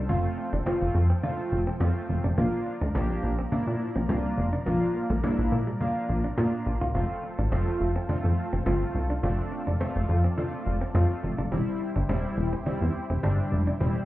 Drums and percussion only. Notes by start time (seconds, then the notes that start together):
0.09 cajon bass
0.24 cajon slap
0.38 cajon slap
0.66 cajon bass, cajon slap
0.81 cajon slap
0.95 cajon slap
1.10 cajon slap
1.24 cajon bass
1.39 cajon slap
1.80 cajon bass, cajon slap
1.96 cajon slap
2.09 cajon slap
2.38 cajon bass
2.53 cajon slap
2.66 cajon slap
2.95 cajon bass, cajon slap
3.10 cajon slap
3.23 cajon slap
3.38 cajon slap
3.52 cajon bass
3.81 cajon slap
4.09 cajon bass, cajon slap
4.24 cajon slap
4.53 cajon slap
4.66 cajon bass
4.81 cajon slap
4.95 cajon slap
5.10 cajon slap
5.24 cajon bass, cajon slap
5.39 cajon slap
5.67 cajon slap
5.81 cajon bass
5.96 cajon slap
6.24 cajon slap
6.38 cajon bass, cajon slap
6.53 cajon slap
6.66 cajon slap
6.81 cajon slap
6.95 cajon bass
7.10 cajon slap
7.23 cajon slap
7.38 cajon slap
7.52 cajon bass, cajon slap
7.67 cajon slap
7.80 cajon slap
7.96 cajon slap
8.09 cajon bass
8.24 cajon slap
8.38 cajon slap
8.66 cajon bass, cajon slap
8.81 cajon slap
8.95 cajon slap
9.10 cajon slap
9.23 cajon bass
9.39 cajon slap
9.52 cajon slap
9.81 cajon bass, cajon slap
9.96 cajon slap
10.24 cajon slap
10.38 cajon bass
10.81 cajon slap
10.95 cajon bass, cajon slap
11.10 cajon slap
11.23 cajon slap
11.38 cajon slap
11.52 cajon bass
11.67 cajon slap
11.81 cajon slap
12.09 cajon bass, cajon slap
12.24 cajon slap
12.53 cajon slap
12.66 cajon bass
12.82 cajon slap
12.95 cajon slap
13.23 cajon bass, cajon slap
13.39 cajon slap
13.81 cajon bass
13.96 cajon slap